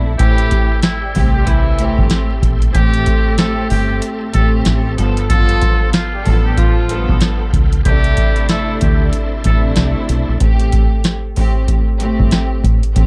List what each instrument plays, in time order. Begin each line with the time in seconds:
Already playing: fingered electric bass A#1, string section C3 A3 D4 E4
0.18 fingered electric bass A1, string section A2 A3 C4 G4, horn section E3 E4, muted trumpet G4, tonewheel organ A4 E5 G5 C6, kick, closed hi-hat
0.38 closed hi-hat
0.51 kick, closed hi-hat
0.83 muted trumpet E4, snare, closed hi-hat
1.01 horn section G3 G4
1.15 fingered electric bass C2, string section A2 A3 C4 G4, kick, open hi-hat
1.33 horn section G3 G4, muted trumpet G4
1.46 horn section E3 E4, kick, closed hi-hat
1.78 string section A2 A3 C4 G4, closed hi-hat
1.98 fingered electric bass G1, kick
2.10 snare, closed hi-hat
2.42 fingered electric bass A#1, kick, closed hi-hat
2.62 closed hi-hat
2.73 fingered electric bass A1, string section A2 A3 C4 G4, muted trumpet G4, tonewheel organ A5, kick, closed hi-hat
2.94 closed hi-hat
3.06 kick, closed hi-hat
3.38 muted trumpet A4, snare, closed hi-hat
3.70 fingered electric bass G1, muted trumpet G4, open hi-hat
4.02 closed hi-hat
4.34 fingered electric bass A1, string section A2 A3 C4 G4, muted trumpet A4, kick, closed hi-hat
4.65 fingered electric bass A1, snare, closed hi-hat
4.97 fingered electric bass G1, string section G2 F3 B3 A4, tonewheel organ F5 G5 B5, closed hi-hat
5.17 closed hi-hat
5.29 string section G2 F3 B3 A4, horn section F3 F4, muted trumpet A4, kick, closed hi-hat
5.49 closed hi-hat
5.62 kick, closed hi-hat
5.93 muted trumpet F4, snare, closed hi-hat
6.13 horn section G3 G4
6.25 fingered electric bass A1, string section G2 F3 B3 A4, kick, open hi-hat
6.45 horn section G3 G4, muted trumpet G4
6.58 horn section F3 F4, kick, closed hi-hat
6.89 string section G2 F3 B3 A4, closed hi-hat
7.09 fingered electric bass B1, kick
7.21 snare, closed hi-hat
7.53 fingered electric bass C#2, kick, closed hi-hat
7.73 closed hi-hat
7.85 fingered electric bass C2, string section C3 A3 D4 E4, muted trumpet G4, tonewheel organ A4 D5 E5 C6, kick, closed hi-hat
8.04 closed hi-hat
8.17 kick, closed hi-hat
8.36 closed hi-hat
8.49 muted trumpet A4, snare, closed hi-hat
8.81 fingered electric bass D2, muted trumpet G4, kick, closed hi-hat
9.13 closed hi-hat
9.44 fingered electric bass A1, string section C3 A3 D4 E4, muted trumpet A4, kick, closed hi-hat
9.76 fingered electric bass C2, snare, closed hi-hat
10.09 fingered electric bass B1, closed hi-hat
10.29 fingered electric bass A#1
10.39 fingered electric bass A1, string section A2 A3 C4 G4, kick, closed hi-hat
10.59 closed hi-hat
10.72 kick, closed hi-hat
11.04 snare, closed hi-hat
11.36 string section A2 A3 C4 G4, kick, open hi-hat
11.68 kick, closed hi-hat
11.99 string section A2 A3 C4 G4, closed hi-hat
12.20 fingered electric bass G1, kick
12.31 snare, closed hi-hat
12.64 fingered electric bass A1, kick, closed hi-hat
12.83 closed hi-hat
12.94 fingered electric bass A1, string section A2 A3 C4 G4, kick, closed hi-hat